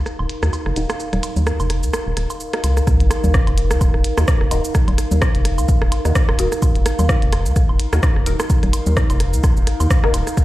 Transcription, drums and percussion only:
0.06 cross-stick soft
0.06 shaker medium
0.19 low woodblock soft
0.29 closed hi-hat medium
0.43 cross-stick medium
0.43 shaker soft
0.53 low woodblock soft
0.53 shaker medium
0.66 cross-stick soft
0.76 closed hi-hat medium
0.76 shaker soft
0.90 cross-stick medium
0.90 low woodblock soft
0.90 shaker soft
1.00 shaker medium
1.13 cross-stick soft
1.13 closed hi-hat soft
1.13 low conga medium
1.23 closed hi-hat medium
1.23 low woodblock soft
1.23 shaker medium
1.36 low conga medium
1.36 shaker soft
1.47 cross-stick medium
1.47 shaker soft
1.60 low woodblock soft
1.60 shaker soft
1.70 cross-stick soft
1.70 closed hi-hat medium
1.83 shaker soft
1.93 cross-stick medium
1.93 low woodblock soft
1.93 shaker medium
2.17 cross-stick soft
2.17 closed hi-hat medium
2.30 low woodblock soft
2.30 shaker soft
2.40 shaker medium
2.53 cross-stick medium
2.53 closed hi-hat soft
2.64 closed hi-hat medium
2.64 low woodblock soft
2.64 shaker soft
2.77 cross-stick soft
2.77 shaker soft
2.87 kick loud
2.87 cross-stick soft
2.87 shaker medium
3.00 closed hi-hat soft
3.11 cross-stick medium
3.11 closed hi-hat medium
3.11 low woodblock soft
3.11 shaker medium
3.24 low conga medium
3.24 shaker soft
3.34 kick loud
3.34 cross-stick soft
3.34 cross-stick medium
3.34 shaker soft
3.47 closed hi-hat soft
3.47 low woodblock soft
3.58 closed hi-hat medium
3.71 cross-stick medium
3.71 shaker soft
3.81 kick loud
3.81 low woodblock soft
3.81 shaker medium
3.94 cross-stick soft
4.04 closed hi-hat loud
4.18 cross-stick medium
4.18 low woodblock soft
4.18 shaker soft
4.28 kick loud
4.28 cross-stick loud
4.28 shaker medium
4.41 cross-stick soft
4.51 closed hi-hat medium
4.51 low woodblock soft
4.51 shaker medium
4.65 shaker soft
4.75 kick loud
4.75 cross-stick medium
4.75 shaker medium
4.88 closed hi-hat soft
4.88 low conga medium
4.88 low woodblock soft
4.98 cross-stick soft
4.98 closed hi-hat medium
4.98 shaker medium
5.11 low conga medium
5.11 shaker soft
5.22 kick loud
5.22 cross-stick medium
5.22 cross-stick loud
5.22 low woodblock soft
5.22 shaker soft
5.35 closed hi-hat soft
5.45 cross-stick soft
5.45 closed hi-hat loud
5.58 low woodblock soft
5.58 shaker soft
5.69 kick loud
5.69 shaker medium
5.82 cross-stick medium
5.92 closed hi-hat loud
5.92 low woodblock soft
6.05 cross-stick soft
6.05 shaker soft
6.15 kick loud
6.15 cross-stick loud
6.15 shaker medium
6.29 cross-stick medium
6.29 low woodblock soft
6.39 closed hi-hat loud
6.39 shaker medium
6.52 cross-stick soft
6.52 shaker soft
6.62 kick loud
6.62 low woodblock soft
6.62 shaker medium
6.75 closed hi-hat soft
6.86 cross-stick medium
6.86 closed hi-hat medium
6.86 shaker soft
6.99 low conga medium
6.99 low woodblock soft
6.99 shaker soft
7.09 kick loud
7.09 cross-stick loud
7.09 cross-stick soft
7.09 shaker soft
7.22 closed hi-hat soft
7.33 cross-stick medium
7.33 closed hi-hat loud
7.33 low woodblock soft
7.46 shaker soft
7.56 kick loud
7.56 cross-stick soft
7.56 shaker medium
7.69 low woodblock soft
7.80 closed hi-hat loud
7.93 cross-stick medium
7.93 shaker soft
8.03 kick loud
8.03 cross-stick medium
8.03 low woodblock soft
8.03 shaker medium
8.16 cross-stick soft
8.26 closed hi-hat loud
8.26 shaker soft
8.40 cross-stick medium
8.40 low woodblock soft
8.40 shaker soft
8.50 kick loud
8.50 shaker medium
8.63 cross-stick soft
8.63 closed hi-hat soft
8.63 low conga medium
8.73 closed hi-hat loud
8.73 low woodblock soft
8.73 shaker soft
8.86 low conga medium
8.86 shaker soft
8.97 kick loud
8.97 cross-stick medium
8.97 shaker soft
9.10 closed hi-hat soft
9.10 low woodblock soft
9.10 shaker soft
9.20 cross-stick soft
9.20 closed hi-hat loud
9.33 shaker soft
9.44 kick loud
9.44 cross-stick medium
9.44 low woodblock soft
9.44 shaker medium
9.57 shaker soft
9.67 cross-stick soft
9.67 closed hi-hat loud
9.80 low woodblock soft
9.80 shaker soft
9.90 kick loud
9.90 cross-stick medium
9.90 shaker soft
10.04 cross-stick medium
10.14 closed hi-hat loud
10.14 low woodblock soft
10.14 shaker soft
10.27 cross-stick soft
10.27 shaker soft
10.37 kick loud
10.37 cross-stick soft
10.37 shaker medium

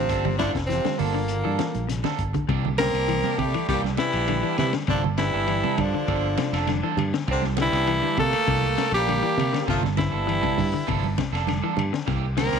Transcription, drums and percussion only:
0.09 kick medium
0.09 closed hi-hat medium
0.25 high conga medium
0.25 low conga medium
0.39 kick medium
0.39 snare medium
0.39 closed hi-hat medium
0.39 high conga loud
0.55 kick medium
0.55 snare medium
0.55 closed hi-hat soft
0.70 snare soft
0.70 closed hi-hat medium
0.84 snare medium
0.84 closed hi-hat soft
0.84 high conga medium
0.99 open hi-hat medium
0.99 low conga medium
1.28 closed hi-hat medium
1.59 snare medium
1.59 closed hi-hat medium
1.59 high conga medium
1.75 closed hi-hat soft
1.75 high conga medium
1.89 snare soft
1.89 closed hi-hat medium
2.04 snare medium
2.04 low conga medium
2.19 kick medium
2.19 closed hi-hat medium
2.34 kick medium
2.34 closed hi-hat soft
2.34 low conga medium
2.49 kick loud
2.49 ride bell medium
2.65 low conga medium
2.78 snare medium
2.78 ride bell medium
2.78 high conga loud
2.95 ride bell medium
3.09 ride bell medium
3.23 high conga medium
3.39 kick medium
3.39 ride bell medium
3.39 low conga medium
3.54 ride bell soft
3.68 kick medium
3.68 snare soft
3.68 ride bell soft
3.84 snare soft
3.84 high conga medium
3.97 snare medium
3.97 ride bell soft
3.97 high conga medium
4.13 ride bell medium
4.28 ride bell medium
4.28 high conga medium
4.58 snare soft
4.58 ride bell medium
4.58 high conga medium
4.58 low conga medium
4.73 snare medium
4.73 ride bell medium
4.87 kick loud
4.87 snare soft
4.87 ride bell medium
5.04 high conga medium
5.04 low conga medium
5.18 snare medium
5.18 ride bell medium
5.18 high conga loud
5.48 ride bell medium
5.64 high conga medium
5.78 kick medium
5.78 ride bell medium
5.78 low conga medium
6.08 kick medium
6.08 ride bell medium
6.38 snare medium
6.38 ride bell medium
6.38 high conga medium
6.54 snare soft
6.54 ride bell medium
6.67 snare soft
6.67 ride bell medium
6.67 high conga medium
6.97 ride bell medium
6.97 high conga medium
6.97 low conga medium
7.14 snare medium
7.28 kick loud
7.28 ride bell medium
7.42 snare soft
7.42 high conga medium
7.57 snare medium
7.57 ride bell medium
7.57 high conga loud
7.73 snare soft
7.73 ride bell medium
7.87 ride bell medium
8.03 high conga medium
8.17 kick medium
8.17 ride bell medium
8.17 low conga medium
8.33 ride bell medium
8.47 kick medium
8.47 ride bell medium
8.63 high conga medium
8.78 snare medium
8.78 ride bell medium
8.78 high conga medium
8.94 snare soft
8.94 ride bell medium
9.08 ride bell medium
9.08 high conga medium
9.38 ride bell medium
9.38 low conga medium
9.54 snare medium
9.54 ride bell medium
9.68 kick medium
9.68 snare soft
9.68 ride bell medium
9.83 snare soft
9.83 high conga medium
9.83 low conga medium
9.97 kick medium
9.97 snare medium
9.97 ride bell medium
9.97 high conga loud
10.29 ride bell soft
10.43 kick medium
10.43 high conga medium
10.58 kick medium
10.58 open hi-hat medium
10.58 low conga medium
10.88 kick medium
10.88 ride bell medium
11.04 high conga medium
11.18 kick medium
11.18 snare medium
11.18 ride bell medium
11.18 high conga medium
11.35 snare soft
11.35 ride bell medium
11.47 snare soft
11.47 ride bell medium
11.47 high conga medium
11.77 ride bell medium
11.77 low conga medium
11.94 snare medium
12.07 kick medium
12.07 snare soft
12.07 ride bell medium
12.37 snare medium
12.37 ride bell medium
12.37 high conga loud
12.53 snare soft
12.53 ride bell medium

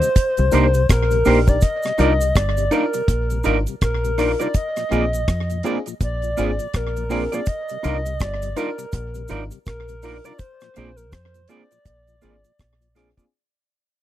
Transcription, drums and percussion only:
0.02 closed hi-hat medium
0.02 cabasa medium
0.16 kick loud
0.16 closed hi-hat loud
0.16 cabasa medium
0.37 closed hi-hat soft
0.37 cabasa soft
0.52 closed hi-hat medium
0.52 cabasa medium
0.74 closed hi-hat soft
0.74 cabasa medium
0.89 kick loud
0.89 cross-stick loud
0.89 closed hi-hat medium
0.89 cabasa medium
1.11 closed hi-hat medium
1.11 cabasa soft
1.25 open hi-hat medium
1.25 cabasa soft
1.48 kick loud
1.48 closed hi-hat soft
1.48 cabasa medium
1.61 kick loud
1.61 closed hi-hat medium
1.61 cabasa medium
1.83 cross-stick medium
1.83 closed hi-hat soft
1.83 cabasa medium
1.98 closed hi-hat medium
1.98 cabasa soft
2.21 closed hi-hat medium
2.21 cabasa medium
2.36 kick loud
2.36 cross-stick loud
2.36 closed hi-hat medium
2.36 cabasa medium
2.57 closed hi-hat medium
2.57 cabasa soft
2.71 closed hi-hat medium
2.71 cabasa medium
2.94 closed hi-hat medium
2.94 cabasa medium
3.08 kick loud
3.08 closed hi-hat loud
3.08 cabasa medium
3.30 closed hi-hat soft
3.30 cabasa soft
3.44 closed hi-hat medium
3.44 cabasa medium
3.67 closed hi-hat soft
3.67 cabasa medium
3.81 kick loud
3.81 cross-stick loud
3.81 closed hi-hat medium
3.81 cabasa medium
4.05 closed hi-hat medium
4.05 cabasa soft
4.18 cross-stick medium
4.18 open hi-hat medium
4.18 cabasa soft
4.40 closed hi-hat medium
4.40 cabasa medium
4.54 kick loud
4.54 closed hi-hat loud
4.54 cabasa medium
4.76 cross-stick medium
4.76 closed hi-hat soft
4.76 cabasa medium
4.92 closed hi-hat medium
4.92 cabasa soft
5.13 closed hi-hat medium
5.13 cabasa medium
5.28 kick loud
5.28 cross-stick loud
5.28 closed hi-hat medium
5.28 cabasa medium
5.50 closed hi-hat medium
5.50 cabasa soft
5.63 closed hi-hat medium
5.63 cabasa medium
5.86 closed hi-hat medium
5.86 cabasa medium
6.01 kick loud
6.01 closed hi-hat loud
6.01 cabasa medium
6.22 closed hi-hat soft
6.22 cabasa soft
6.37 closed hi-hat medium
6.37 cabasa medium
6.59 closed hi-hat medium
6.59 cabasa medium
6.74 kick medium
6.74 cross-stick medium
6.74 closed hi-hat medium
6.74 cabasa medium
6.97 closed hi-hat medium
6.97 cabasa soft
7.10 open hi-hat medium
7.10 cabasa soft
7.32 closed hi-hat medium
7.32 cabasa medium
7.46 kick loud
7.46 closed hi-hat medium
7.46 cabasa medium
7.69 closed hi-hat soft
7.69 cabasa soft
7.84 closed hi-hat medium
7.84 cabasa soft
8.06 closed hi-hat medium
8.06 cabasa medium
8.20 kick loud
8.20 cross-stick loud
8.20 closed hi-hat medium
8.20 cabasa medium
8.42 closed hi-hat medium
8.42 cabasa medium
8.57 closed hi-hat medium
8.57 cabasa medium
8.79 closed hi-hat medium
8.79 cabasa medium
8.92 kick loud
8.92 closed hi-hat loud
8.92 cabasa medium
9.15 closed hi-hat soft
9.15 cabasa soft
9.28 closed hi-hat medium
9.28 cabasa medium
9.51 closed hi-hat soft
9.51 cabasa medium
9.66 kick loud
9.66 cross-stick medium
9.66 closed hi-hat medium
9.66 cabasa medium
9.88 closed hi-hat medium
9.88 cabasa soft
10.02 open hi-hat medium
10.02 cabasa soft
10.24 closed hi-hat medium
10.24 cabasa medium
10.39 kick loud
10.39 closed hi-hat medium
10.39 cabasa medium
10.61 cross-stick medium
10.61 closed hi-hat soft
10.61 cabasa soft
10.76 closed hi-hat medium
10.76 cabasa soft
10.97 closed hi-hat medium
10.97 cabasa medium
11.12 kick loud
11.12 cross-stick loud
11.12 closed hi-hat medium
11.12 cabasa medium
11.34 closed hi-hat medium
11.34 cabasa soft
11.48 closed hi-hat medium
11.48 cabasa soft
11.71 closed hi-hat soft
11.71 cabasa medium
11.86 kick loud
11.86 closed hi-hat loud
11.86 cabasa medium
12.07 closed hi-hat soft
12.07 cabasa soft
12.22 closed hi-hat medium
12.22 cabasa medium
12.44 closed hi-hat soft
12.44 cabasa medium
12.59 kick loud
12.59 cross-stick medium
12.59 closed hi-hat medium
12.59 cabasa medium
12.81 closed hi-hat medium
12.81 cabasa soft
12.95 cross-stick medium
12.95 closed hi-hat medium
12.95 cabasa soft
13.18 kick medium
13.18 closed hi-hat soft
13.18 cabasa medium

